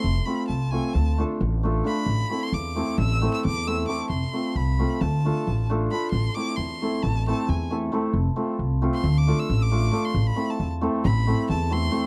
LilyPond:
<<
  \new Staff \with { instrumentName = "Violin" } { \time 9/8 \key a \minor \tempo 4. = 89 c'''8 b''8 a''8 gis''8 a''8 r4. b''8~ | b''8. c'''16 d'''4 e'''8. e'''16 d'''8 e'''8 d'''8 | c'''4 b''4 a''4. r8 b''8 | c'''8 d'''8 c'''4 a''8 a''8 gis''8 r4 |
r4. r16 c'''8 d'''8 e'''8 d'''4 c'''16~ | c'''32 c'''32 b''8 a''8 r8. b''4 a''8 c'''4 | }
  \new Staff \with { instrumentName = "Hammered dulcimer" } { \time 9/8 \key a \minor r8 <a c' f' a'>8 r8 <a c' f' a'>8 r8 <a d' f' a'>8 r8 <a d' f' a'>8 <a d' f' a'>8 | r8 <a c' e' a'>8 r8 <a c' e' a'>8 r8 <a c' e' a'>8 r8 <a c' e' a'>8 <a c' e' a'>8 | r8 <a c' f' a'>8 r8 <a c' f' a'>8 r8 <a d' f' a'>8 r8 <a d' f' a'>8 <a d' f' a'>8 | r8 <a c' e' a'>8 r8 <a c' e' a'>8 r8 <a c' e' a'>8 r8 <a c' e' a'>8 <a c' e' a'>8 |
r8 <a c' f' a'>8 r8 <a c' f' a'>8 r8 <a d' f' a'>8 r8 <a d' f' a'>8 <a d' f' a'>8 | r8 <a c' e' a'>8 r8 <a c' e' a'>8 r8 <a c' e' a'>8 r8 <a c' e' a'>8 <a c' e' a'>8 | }
  \new Staff \with { instrumentName = "Upright bass" } { \clef bass \time 9/8 \key a \minor f,,8 r8 c,4 d,4 a,,4. | a,,8 r8 e,4 a,,4 e,4. | f,,8 r8 c,4 d,4 a,,4. | a,,8 r8 e,4 a,,4 e,4. |
f,,8 r8 c,4 d,4 a,,4. | a,,8 r8 e,4 a,,4 e,4. | }
>>